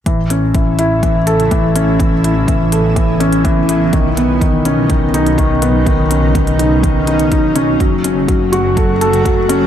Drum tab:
HH |x-x-x-x-x-xxx-x-|x-x-x-x-x-xxx-x-|x-x-x-x-x-xxx-x-|x-x-xxx-x-xxx-x-|
BD |o---o---o---o---|o---o---o---o---|o---o---o---o---|o---o---o---o---|

HH |x-x-x-x-x-xxx-x-|
BD |o---o---o---o---|